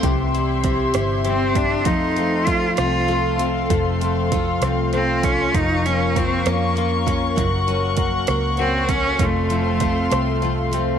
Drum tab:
HH |xxxxxx|xxxxxx|xxxxxx|xxxxxx|
SD |---rr-|--rr--|---rr-|--rr--|
BD |o-o--o|o-o---|o-o--o|o-o--o|

HH |xxxxxx|xxxxxx|
SD |---rr-|--rr--|
BD |o-o--o|o-o---|